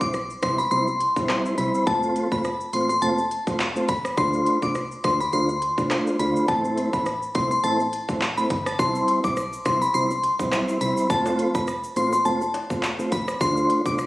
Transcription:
0.00 B1 G3 C4 E4 C5 D6, kick, shaker
0.14 cross-stick, shaker
0.30 shaker
0.42 C2 G3 C4 E4 C5 C6, kick, cross-stick, closed hi-hat, shaker
0.58 B5, shaker
0.71 C2 G3 C4 E4 C5 C6, shaker
0.88 shaker
1.00 closed hi-hat, shaker
1.16 B1 G3 C4 E4 C5, kick, shaker
1.29 cross-stick, clap, shaker
1.46 shaker
1.58 C2 G3 C4 E4 C5 B5, closed hi-hat, shaker
1.75 shaker
1.86 F1 A3 C4 F4 C5 A5, kick, shaker
2.03 shaker
2.16 closed hi-hat, shaker
2.32 F1 A3 C4 F4 C5 B5, kick, shaker
2.44 cross-stick, shaker
2.61 shaker
2.73 A1 A3 C4 F4 C5 C6, closed hi-hat, shaker
2.89 C6, shaker
3.02 F1 A3 C4 F4 C5 A5, shaker
3.18 shaker
3.31 closed hi-hat, shaker
3.47 F1 A3 C4 F4 C5, kick, shaker
3.60 clap, shaker
3.76 A3 C4 F4 C5, shaker
3.89 E1 B5, kick, closed hi-hat, shaker
4.05 cross-stick, shaker
4.17 D2 A3 D4 F4 C5 C6, kick, shaker
4.33 shaker
4.46 closed hi-hat, shaker
4.62 C2 A3 D4 F4 C5 D6, kick, shaker
4.75 cross-stick, shaker
4.91 shaker
5.04 D2 A3 D4 F4 C5 C6, kick, cross-stick, closed hi-hat, shaker
5.20 B5, shaker
5.33 D2 A3 D4 F4 C5 C6, shaker
5.49 shaker
5.62 closed hi-hat, shaker
5.78 C2 A3 D4 F4 C5, kick, shaker
5.91 cross-stick, clap, shaker
6.07 shaker
6.19 D2 A3 D4 F4 C5 B5, closed hi-hat, shaker
6.36 shaker
6.48 A1 A3 C4 E4 C5 A5, kick, shaker
6.65 shaker
6.78 closed hi-hat, shaker
6.93 A1 A3 C4 E4 C5 B5, kick, shaker
7.06 cross-stick, shaker
7.22 shaker
7.35 C2 A3 C4 E4 C5 C6, kick, closed hi-hat, shaker
7.51 C6, shaker
7.64 A1 A3 C4 E4 C5 A5, shaker
7.80 shaker
7.93 closed hi-hat, shaker
8.09 A1 A3 C4 E4 C5, kick, shaker
8.21 clap, shaker
8.37 A3 C4 E4 C5 B5, shaker
8.50 G1, kick, closed hi-hat, shaker
8.66 A5, cross-stick, shaker
8.79 C2 G3 C4 E4 C5 C6, kick, shaker
8.95 shaker
9.08 closed hi-hat, shaker
9.24 B1 G3 C4 E4 C5 D6, kick, shaker
9.37 cross-stick, shaker
9.53 shaker
9.65 C2 G3 C4 E4 C5 C6, kick, cross-stick, closed hi-hat, shaker
9.82 B5, shaker
9.94 C2 G3 C4 E4 C5 C6, shaker
10.11 shaker
10.23 closed hi-hat, shaker
10.39 B1 G3 C4 E4 C5, kick, shaker
10.52 cross-stick, clap, shaker
10.68 shaker
10.81 C2 G3 C4 E4 C5 B5, closed hi-hat, shaker
10.97 shaker
11.10 F1 A3 C4 F4 C5 A5, kick, shaker
11.26 high timbale, shaker
11.39 closed hi-hat, shaker
11.55 F1 A3 C4 F4 C5 B5, kick, shaker
11.67 cross-stick, shaker
11.84 shaker
11.96 A1 A3 C4 F4 C5 C6, closed hi-hat, shaker
12.13 C6, shaker
12.25 F1 A3 C4 F4 C5 A5, shaker
12.41 shaker
12.54 closed hi-hat, high timbale, shaker
12.70 F1 A3 C4 F4 C5, kick, shaker
12.83 clap, shaker
12.99 A3 C4 F4 C5, shaker
13.12 E1 B5, kick, closed hi-hat, shaker
13.28 cross-stick, shaker
13.41 D2 A3 D4 F4 C5 C6, kick, shaker
13.57 shaker
13.70 closed hi-hat, shaker
13.86 C2 A3 D4 F4 C5 D6, kick, shaker
13.98 cross-stick, shaker

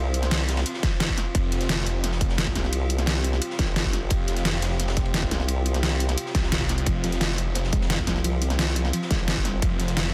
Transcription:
Already playing: C2 C4 F4 C5
0.14 closed hi-hat, ride
0.23 snare, closed hi-hat
0.31 snare, closed hi-hat, ride
0.49 snare, closed hi-hat, ride
0.57 snare, ride
0.66 closed hi-hat, ride
0.74 snare
0.83 kick, snare, closed hi-hat, ride
1.00 snare, closed hi-hat, ride
1.09 kick, snare
1.18 snare, closed hi-hat, ride
1.35 F1 G4, kick, closed hi-hat, ride
1.52 snare, closed hi-hat, ride
1.60 snare, closed hi-hat
1.69 snare, closed hi-hat, ride
1.86 F1, closed hi-hat, ride
2.04 snare, closed hi-hat, ride
2.12 snare
2.21 F1, kick, closed hi-hat, ride
2.29 snare
2.38 snare, closed hi-hat, ride
2.47 kick, snare
2.55 C2, snare, closed hi-hat, ride
2.64 snare
2.72 closed hi-hat, ride
2.90 closed hi-hat, ride
2.99 snare, closed hi-hat
3.06 snare, closed hi-hat, ride
3.24 closed hi-hat, ride
3.33 snare
3.41 closed hi-hat, ride
3.50 snare
3.59 G1, kick, snare, closed hi-hat, ride
3.76 snare, closed hi-hat, ride
3.85 kick, snare
3.93 snare, closed hi-hat, ride
4.10 F1, kick, closed hi-hat, ride
4.27 snare, closed hi-hat, ride
4.37 snare, closed hi-hat
4.45 snare, closed hi-hat, ride
4.62 F1, snare, closed hi-hat, ride
4.72 snare
4.79 snare, closed hi-hat, ride
4.88 snare, ride
4.97 F1, kick, snare, closed hi-hat
5.06 ride
5.14 snare, closed hi-hat, ride
5.23 kick, snare
5.31 C2, snare, closed hi-hat, ride
5.40 snare
5.48 closed hi-hat, ride
5.66 closed hi-hat, ride
5.74 snare, closed hi-hat
5.83 snare, closed hi-hat, ride
6.00 closed hi-hat, ride
6.09 snare, closed hi-hat
6.18 closed hi-hat, ride
6.26 snare
6.35 C2, kick, snare, closed hi-hat, ride
6.43 snare
6.52 snare, closed hi-hat, ride
6.61 kick, snare
6.69 snare, closed hi-hat, ride
6.78 closed hi-hat
6.86 F1 F3 C5, kick, closed hi-hat, ride
7.04 F3, snare, closed hi-hat, ride
7.12 snare, closed hi-hat
7.21 F4, snare, closed hi-hat, ride
7.38 F1 F3, closed hi-hat, ride
7.55 C4, snare, closed hi-hat, ride
7.64 snare
7.72 F1 G#3, kick, closed hi-hat, ride
7.81 snare
7.90 F4, snare, closed hi-hat, ride
7.98 kick, snare
8.07 C2 F3, snare, closed hi-hat, ride
8.16 snare
8.24 F3, closed hi-hat, ride
8.42 C4, closed hi-hat, ride
8.50 snare, closed hi-hat
8.59 F4, snare, closed hi-hat, ride
8.76 F3, closed hi-hat, ride
8.85 snare
8.93 F3, closed hi-hat, ride
9.02 snare
9.11 G1 G#3, kick, snare, closed hi-hat, ride
9.28 C4, snare, closed hi-hat, ride
9.36 kick, snare
9.45 G3, snare, closed hi-hat, ride
9.62 F1 F3, kick, closed hi-hat, ride
9.80 F3, snare, closed hi-hat, ride
9.88 snare, closed hi-hat
9.97 F4, snare, closed hi-hat, ride

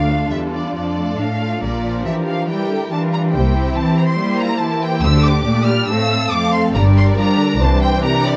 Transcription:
Already playing: D2 A3 D4 F4 D5 F5
0.10 A4
0.31 E2 G3 E5
0.54 D5
0.75 F2 F3 A4 D5
0.97 A3
1.18 A2 D4 F5
1.40 F4
1.62 A#1 A#2 G3 D4 A#4 D5
1.84 F3
2.05 E3 G4 E5
2.27 F5
2.48 E3 G3 E4 G4 A#4 G5
2.70 D3
2.91 E3 G3 D4 F4 A5
3.13 A#5
3.34 C2 C3 A#3 E4 G4 C5 G5
3.55 C4
3.76 E3 C4 A5
3.98 A#5
4.08 C6
4.18 G3 A#3 E4 G4
4.40 F4 A#5
4.61 E3 G4 A5
4.82 G5
5.03 D2 D3 A3 D4 E6
5.25 D6
5.46 A#2 A3 D5
5.67 G3 F6
5.88 A2 A3 C4 A4 F5 E6
6.11 C4
6.32 F2 A3 F5 D6
6.54 C6
6.74 G1 G2 G3 D4 A#4 D5 A#5
6.97 C6
7.17 F3 G3 D4 A#5
7.38 D3
7.59 C2 E3 C5 A5
7.82 G5
8.02 C3 G4 A#4 A#5
8.25 D5

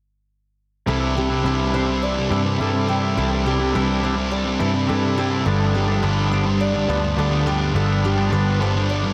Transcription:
0.86 C2 C3 E3 G3 C4 D4 E4 A4
1.00 G3 D4 E4
1.15 C3 G3 C4 G4
1.30 G3 C4 D4 E4
1.43 C2 C3 E3 G3 C4 D4 E4 B4
1.72 C3 E3 G3 D4 E4 C5
1.76 C4
1.86 G3 C4, muted clean electric guitar stroke
2.02 D5
2.15 G3 C4
2.29 G2 C3 E3 G3 C4 D4 E4 B4
2.44 G3 C4, muted clean electric guitar stroke
2.58 G2 C3 E3 G3 C4 D4 E4 A4
2.73 G3 C4
2.87 C3 E3 G3 C4 D4 E4 G4
3.01 G3 D4 E4
3.16 C2 C3 E3 G3 C4 D4 E4 A4
3.31 G3 D4 E4
3.45 C3 G3 C4 G4
3.59 G3 C4 D4 E4
3.73 C2 C3 E3 G3 C4 D4 E4 B4
4.01 C3 E3 G3 C4 D4 E4 C5
4.16 G3 C4, muted clean electric guitar stroke
4.31 D5
4.44 G3 C4
4.59 G2 C3 E3 G3 C4 D4 E4 B4
4.73 G3 C4, muted clean electric guitar stroke
4.87 G2 C3 E3 G3 C4 D4 E4 A4
5.02 G3 C4
5.16 C3 E3 G3 C4 D4 E4 G4
5.31 G3 D4 E4
5.44 G1 G2 D3 F3 G3 B3 D4 A4
5.59 F3 B3 D4
5.73 G2 D3 G3 G4
5.87 D3 F3 G3 B3 D4
6.01 G1 G2 D3 F3 G3 B3 D4 B4
6.30 G2 D3 F3 G3 B3 D4 C5
6.44 D3 G3, muted clean electric guitar stroke
6.60 D5
6.73 D3 G3
6.87 D2 G2 D3 F3 G3 B3 D4 B4
7.02 D3 G3, muted clean electric guitar stroke
7.16 D2 G2 D3 F3 G3 B3 D4 A4
7.31 D3 G3
7.45 G2 D3 F3 G3 B3 D4 G4
7.59 F3 B3 D4
7.73 G1 G2 D3 F3 G3 B3 D4 A4
7.87 F3 B3 D4
8.03 G2 D3 G3 G4
8.17 D3 F3 G3 B3 D4
8.30 G1 G2 D3 F3 G3 B3 D4 B4
8.59 G2 D3 F3 G3 B3 D4 C5
8.73 G3, muted clean electric guitar stroke
8.77 D3
8.90 D5
9.03 D3 G3

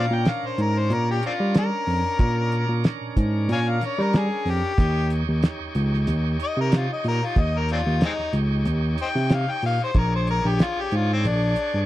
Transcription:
Already playing: C#4 D4 A#4 F5
0.11 A#2 G5
0.25 F5, snare, closed hi-hat
0.43 A#2 C5
0.58 G#2 A#4, closed hi-hat
0.78 C5
0.90 A#2 A#4, closed hi-hat
1.11 G4
1.23 C4 D4 F4, closed hi-hat
1.40 G3
1.54 snare, closed hi-hat
1.59 A#4
1.87 F2, open hi-hat
2.19 A#2, kick, closed hi-hat
2.52 closed hi-hat
2.69 A#2
2.84 snare, closed hi-hat
3.01 A#2
3.17 G#2, kick, closed hi-hat
3.49 A#2 C#5 F5 G#5, closed hi-hat
3.69 F5
3.81 C#5, snare, closed hi-hat
3.99 G3, snare
4.03 A#4
4.13 snare, closed hi-hat
4.17 G#4
4.45 F2, snare, open hi-hat
4.50 G4
4.77 D#2 D#4 G4 C#5, kick, closed hi-hat
5.10 closed hi-hat
5.28 D#2
5.43 snare, closed hi-hat
5.60 D#2
5.75 C#2, closed hi-hat
5.93 snare
6.07 D#2, closed hi-hat
6.40 D#5, closed hi-hat
6.57 C3 A#4
6.72 snare, closed hi-hat
6.76 F4
6.93 D#5
7.04 A#2, open hi-hat
7.08 A#4
7.25 F4
7.36 D#2, kick, closed hi-hat
7.40 D#5
7.58 A#4
7.69 C4 D4 F4, closed hi-hat
7.86 D#2
8.01 G#3 C4 D#4, snare, closed hi-hat
8.19 D#2, snare
8.33 C#2, closed hi-hat
8.65 D#2, closed hi-hat
8.98 closed hi-hat
9.02 C5 D#5 G5
9.15 C3, snare
9.30 snare, closed hi-hat
9.35 F5
9.51 G5
9.62 A#2 F5, open hi-hat
9.84 C5
9.94 A#1 D4 G#4 C#5, kick, closed hi-hat
9.99 A#4
10.15 C5
10.27 A#4, closed hi-hat
10.45 A#1 G4
10.59 snare, closed hi-hat
10.63 F4
10.77 A#1 G4
10.91 G#2 F4, closed hi-hat
11.13 C4
11.24 A#1 D4, closed hi-hat
11.56 closed hi-hat
11.74 G2

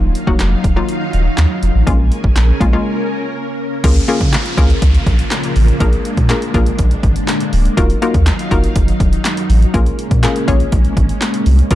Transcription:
Already playing: D#1 F#3 A#3 D#4 F4 F5
0.15 closed hi-hat
0.27 D#1 F#3 A#3 D#4 F#4, kick
0.39 F1, snare, clap, closed hi-hat
0.64 D#1, kick, closed hi-hat
0.76 F#3 A#3 D#4 F4
0.89 closed hi-hat
1.13 D#1, closed hi-hat
1.37 D#2, snare, clap, closed hi-hat
1.63 F1, closed hi-hat
1.75 A1
1.87 A#1 G#3 A#3 C#4 F4 A#4 G#5, kick, closed hi-hat
2.12 closed hi-hat
2.24 G#1, kick
2.36 A#1, snare, clap, closed hi-hat
2.60 A#1 G#3 A#3 C#4 F4, kick, closed hi-hat
2.73 G#3 A#3 C#4 F4
3.84 C#2 C#3 A#3 C#4 F4 G#4 A#4, kick, closed hi-hat, crash, downlifter
3.96 closed hi-hat
4.08 A#3 C#4 F4 G#4 A#4, closed hi-hat
4.21 C#3, kick, closed hi-hat
4.33 snare, clap, closed hi-hat
4.46 closed hi-hat
4.57 C#2 A#3 C#4 F4 G#4 A#4, kick, closed hi-hat
4.70 closed hi-hat
4.82 C#2, kick, closed hi-hat
4.95 closed hi-hat
5.06 A#1, kick, closed hi-hat
5.19 closed hi-hat
5.31 snare, clap, closed hi-hat
5.44 closed hi-hat
5.56 A1, open hi-hat
5.68 closed hi-hat
5.80 A#1 G#3 A#3 D4 F4 G#4 A#4, kick, closed hi-hat
5.93 closed hi-hat
6.05 closed hi-hat
6.17 A#2, kick, closed hi-hat
6.29 A#3 D4 F4 G#4 A#4, snare, clap, closed hi-hat
6.42 closed hi-hat
6.54 A#1 A#3 D4 F4 G#4 A#4, kick, closed hi-hat
6.66 closed hi-hat
6.79 A#1, kick, closed hi-hat
6.91 closed hi-hat
7.03 G#1, kick, closed hi-hat
7.16 closed hi-hat
7.28 snare, clap, closed hi-hat
7.40 closed hi-hat
7.53 D1, open hi-hat
7.65 closed hi-hat
7.77 D#1 F#3 A#3 D#4 F4 F#4 A#4 F5, kick, closed hi-hat
7.90 closed hi-hat
8.02 A#3 D#4 F4 F#4 A#4, closed hi-hat
8.14 D#2, kick, closed hi-hat
8.26 snare, clap, closed hi-hat
8.39 closed hi-hat
8.51 F1 A#3 D#4 F4 F#4 A#4, kick, closed hi-hat
8.64 closed hi-hat
8.76 F1, kick, closed hi-hat
8.88 closed hi-hat
9.00 D#1, kick, closed hi-hat
9.13 closed hi-hat
9.24 snare, clap, closed hi-hat
9.37 closed hi-hat
9.49 A1, open hi-hat
9.62 closed hi-hat
9.74 A#1 G#3 A#3 C#4 F4 G#4 A#4, kick, closed hi-hat
9.86 closed hi-hat
9.99 closed hi-hat
10.11 A#2, kick, closed hi-hat
10.23 A#3 C#4 F4 G#4 A#4, snare, clap, closed hi-hat
10.36 closed hi-hat
10.48 A#1 A#3 C#4 F4 G#4 C#5, kick, closed hi-hat
10.60 closed hi-hat
10.72 A#1, kick, closed hi-hat
10.85 closed hi-hat
10.97 G#1, kick, closed hi-hat
11.09 closed hi-hat
11.21 snare, clap, closed hi-hat
11.34 closed hi-hat
11.46 C2, open hi-hat
11.59 closed hi-hat
11.71 C#2 C#3 A#3 C#4 F4 G#4 A#4, kick, closed hi-hat

